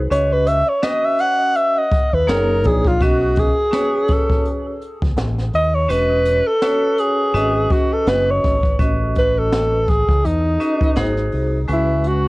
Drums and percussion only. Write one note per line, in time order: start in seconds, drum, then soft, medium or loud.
0.11 closed hi-hat loud
0.47 closed hi-hat medium
0.83 snare loud
0.83 closed hi-hat loud
1.18 closed hi-hat medium
1.55 closed hi-hat medium
1.91 kick loud
1.91 closed hi-hat medium
2.28 snare loud
2.28 closed hi-hat medium
2.64 kick medium
2.64 closed hi-hat medium
2.85 kick medium
2.85 closed hi-hat medium
3.00 kick loud
3.00 closed hi-hat loud
3.36 kick medium
3.36 closed hi-hat medium
3.73 snare loud
3.73 closed hi-hat loud
4.08 kick loud
4.08 closed hi-hat medium
4.30 kick loud
4.45 closed hi-hat medium
4.82 closed hi-hat medium
5.02 kick loud
5.17 snare loud
5.17 closed hi-hat medium
5.38 snare soft
5.53 closed hi-hat medium
5.89 closed hi-hat loud
6.25 closed hi-hat medium
6.62 snare loud
6.62 closed hi-hat loud
6.98 closed hi-hat medium
7.36 closed hi-hat medium
7.70 kick loud
7.70 closed hi-hat medium
8.06 snare loud
8.06 closed hi-hat medium
8.43 kick medium
8.43 snare soft
8.43 open hi-hat soft
8.63 kick medium
8.63 closed hi-hat medium
8.79 kick loud
8.79 closed hi-hat loud
9.15 kick medium
9.15 closed hi-hat medium
9.52 snare loud
9.52 closed hi-hat medium
9.88 kick medium
9.88 closed hi-hat medium
10.09 kick medium
10.25 closed hi-hat medium
10.60 closed hi-hat medium
10.81 kick loud
10.96 snare loud
10.96 closed hi-hat medium
11.17 snare soft
11.32 open hi-hat soft
11.68 closed hi-hat loud
12.04 closed hi-hat medium